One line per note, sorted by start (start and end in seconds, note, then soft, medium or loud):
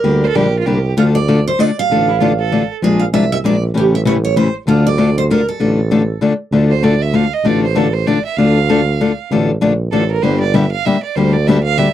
0.00 0.24 D3 medium
0.00 0.24 G3 medium
0.00 0.80 A#4 medium
0.04 0.29 D2 medium
0.04 0.24 A#3 medium
0.04 0.24 D4 medium
0.04 0.24 G4 medium
0.24 0.28 C5 medium
0.28 0.37 A4 medium
0.34 0.61 A#1 medium
0.34 0.46 D3 medium
0.34 0.46 G3 medium
0.34 0.46 A#3 medium
0.34 0.46 D4 medium
0.34 0.58 G4 medium
0.34 0.46 G4 medium
0.59 0.67 F4 medium
0.66 0.93 C2 medium
0.66 0.77 D3 medium
0.66 0.77 G3 medium
0.66 0.77 A#3 medium
0.66 0.77 D4 medium
0.66 0.91 G4 medium
0.66 0.78 G4 medium
0.97 1.50 D2 medium
0.97 1.16 D3 medium
0.97 1.17 A3 medium
0.97 1.17 D4 medium
0.97 1.03 F4 medium
0.97 1.17 F4 medium
0.97 1.17 A4 medium
1.15 1.44 D5 medium
1.28 1.39 D3 medium
1.28 1.39 A3 medium
1.28 1.39 D4 medium
1.28 1.39 F4 medium
1.28 1.39 A4 medium
1.48 1.60 C5 medium
1.59 1.69 D3 medium
1.59 1.70 A3 medium
1.59 1.70 D4 medium
1.59 1.70 F4 medium
1.59 1.70 A4 medium
1.59 1.78 D5 medium
1.79 2.66 F5 medium
1.90 2.64 A1 medium
1.90 2.10 D3 medium
1.90 2.10 A3 medium
1.90 2.10 D4 medium
1.90 2.10 F4 medium
1.90 2.10 A4 medium
2.08 2.19 E4 medium
2.20 2.31 D3 medium
2.20 2.31 A3 medium
2.20 2.32 D4 medium
2.20 2.28 F4 medium
2.20 2.32 F4 medium
2.20 2.32 A4 medium
2.39 2.73 A4 medium
2.52 2.62 D3 medium
2.52 2.62 A3 medium
2.52 2.62 D4 medium
2.52 2.62 F4 medium
2.52 2.63 A4 medium
2.82 3.07 A#1 medium
2.82 3.02 F3 medium
2.82 3.02 G#3 medium
2.82 3.02 D4 medium
2.82 3.02 F4 medium
2.82 3.01 G#4 medium
2.82 3.02 A#4 medium
3.00 3.05 F5 medium
3.13 3.39 C2 medium
3.13 3.24 F3 medium
3.13 3.24 G#3 medium
3.13 3.24 D4 medium
3.13 3.24 F4 medium
3.13 3.24 A#4 medium
3.13 3.31 E5 medium
3.32 3.37 E5 medium
3.44 3.70 A#1 medium
3.44 3.54 F3 medium
3.44 3.55 G#3 medium
3.44 3.55 D4 medium
3.44 3.55 F4 medium
3.44 3.55 A#4 medium
3.44 3.63 D5 medium
3.74 4.49 A1 medium
3.74 3.94 C#3 medium
3.74 3.94 E3 medium
3.74 3.94 A3 medium
3.74 3.94 C#4 medium
3.74 3.94 G4 medium
3.74 3.82 G4 medium
3.95 4.00 E5 medium
4.05 4.16 C#3 medium
4.05 4.16 E3 medium
4.05 4.16 A3 medium
4.05 4.16 C#4 medium
4.05 4.16 G4 medium
4.05 4.12 C#5 medium
4.25 4.37 C#5 medium
4.36 4.47 C#3 medium
4.36 4.47 E3 medium
4.36 4.47 A3 medium
4.36 4.47 C#4 medium
4.36 4.47 G4 medium
4.36 4.53 C5 medium
4.67 5.42 D2 medium
4.67 4.86 D3 medium
4.67 4.87 A3 medium
4.67 4.87 D4 medium
4.67 4.87 F4 medium
4.67 4.85 F4 medium
4.67 4.87 A4 medium
4.87 5.17 D5 medium
4.98 5.08 D3 medium
4.98 5.09 A3 medium
4.98 5.09 D4 medium
4.98 5.09 F4 medium
4.98 5.09 A4 medium
5.18 5.23 C5 medium
5.30 5.40 D3 medium
5.30 5.40 A3 medium
5.30 5.41 D4 medium
5.30 5.41 F4 medium
5.30 5.41 A4 medium
5.30 5.48 A#4 medium
5.49 6.19 A4 medium
5.60 6.13 A1 medium
5.60 5.79 D3 medium
5.60 5.79 A3 medium
5.60 5.79 D4 medium
5.60 5.80 F4 medium
5.60 5.80 A4 medium
5.91 6.02 D3 medium
5.91 6.02 A3 medium
5.91 6.01 D4 medium
5.91 6.02 F4 medium
5.91 6.02 A4 loud
6.21 6.32 D3 medium
6.21 6.32 A3 medium
6.21 6.32 D4 medium
6.21 6.32 F4 medium
6.21 6.33 A4 medium
6.51 7.26 D2 medium
6.51 6.72 D3 medium
6.51 6.72 A3 medium
6.51 6.72 D4 medium
6.51 6.72 F4 medium
6.51 6.72 A4 medium
6.70 6.85 C5 medium
6.83 6.94 D3 medium
6.83 6.94 A3 medium
6.83 6.94 D4 medium
6.83 6.94 F4 medium
6.83 6.94 A4 medium
6.83 7.03 D5 medium
7.02 7.16 E5 medium
7.13 7.24 D3 medium
7.13 7.24 A3 medium
7.13 7.25 D4 medium
7.13 7.24 F4 medium
7.13 7.25 A4 medium
7.13 7.34 F5 medium
7.33 7.48 D#5 medium
7.44 8.19 A1 medium
7.44 7.64 D3 medium
7.44 7.64 A3 medium
7.44 7.65 D4 medium
7.44 7.65 F4 medium
7.44 7.65 A4 medium
7.44 7.63 D5 medium
7.63 7.79 C5 medium
7.75 7.86 D3 medium
7.75 7.86 A3 medium
7.75 7.87 D4 medium
7.75 7.86 F4 medium
7.75 7.87 A4 medium
7.75 7.95 A4 medium
7.93 8.08 C5 medium
8.07 8.18 D3 medium
8.07 8.18 A3 medium
8.07 8.18 D4 medium
8.07 8.18 F4 medium
8.07 8.18 A4 medium
8.07 8.24 D5 medium
8.25 8.38 E5 medium
8.36 9.12 D2 medium
8.36 8.57 D3 medium
8.36 8.58 A3 medium
8.36 8.57 D4 medium
8.36 8.58 F4 medium
8.36 8.58 A4 medium
8.36 9.30 F5 medium
8.69 8.80 D3 medium
8.69 8.80 A3 medium
8.69 8.80 D4 medium
8.69 8.80 F4 medium
8.69 8.80 A4 medium
9.01 9.11 D3 medium
9.01 9.11 A3 medium
9.01 9.11 D4 medium
9.01 9.11 F4 medium
9.01 9.11 A4 medium
9.30 9.55 A1 medium
9.30 9.50 D3 medium
9.30 9.50 A3 medium
9.30 9.51 D4 medium
9.30 9.51 F4 medium
9.30 9.51 A4 medium
9.61 9.87 A#1 medium
9.61 9.72 D3 medium
9.61 9.72 A3 medium
9.61 9.72 D4 medium
9.61 9.72 F4 medium
9.61 9.72 A4 medium
9.91 10.18 A1 medium
9.91 10.03 D3 medium
9.91 10.03 A3 medium
9.91 10.03 D4 medium
9.91 10.03 F4 medium
9.91 10.08 A4 medium
9.91 10.03 A4 medium
10.11 10.24 A#4 medium
10.22 10.75 G1 medium
10.22 10.42 D3 medium
10.22 10.42 G3 medium
10.22 10.42 A#3 medium
10.22 10.43 D4 medium
10.22 10.42 G4 medium
10.22 10.39 C5 medium
10.40 10.56 D5 medium
10.54 10.64 D3 medium
10.54 10.64 G3 medium
10.54 10.64 A#3 medium
10.54 10.64 D4 medium
10.54 10.65 G4 loud
10.54 10.71 E5 medium
10.72 10.87 F5 medium
10.85 10.95 D3 medium
10.85 10.96 G3 medium
10.85 10.96 A#3 medium
10.85 10.96 D4 medium
10.85 10.96 G4 medium
10.85 11.02 E5 medium
11.03 11.17 D5 medium
11.15 11.89 D2 medium
11.15 11.35 D3 medium
11.15 11.35 G3 medium
11.15 11.35 A#3 medium
11.15 11.35 D4 medium
11.15 11.36 G4 medium
11.15 11.34 C5 medium
11.32 11.48 D5 medium
11.47 11.57 D3 medium
11.47 11.57 G3 medium
11.47 11.58 A#3 medium
11.47 11.58 D4 medium
11.47 11.58 G4 loud
11.47 11.63 E5 medium
11.63 11.79 F5 loud
11.77 11.88 D3 medium
11.77 11.88 G3 medium
11.77 11.88 A#3 medium
11.77 11.88 D4 medium
11.77 11.88 G4 medium
11.77 11.93 E5 medium